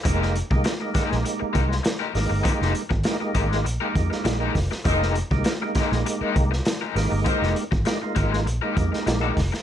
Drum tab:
HH |x-x-x-x-x-x-x-o-|x-x-x-x-x-x-x-o-|x-x-x-x-x-x-x-o-|x-x-x-x-x-x-x-o-|
SD |-o--o-oo---oo-o-|-o--o--o---oo-oo|-o--o-oo---oo-o-|-o--o--o---oo-oo|
BD |o--o--o---o-----|o--o--o---o---o-|o--o--o---o-----|o--o--o---o---o-|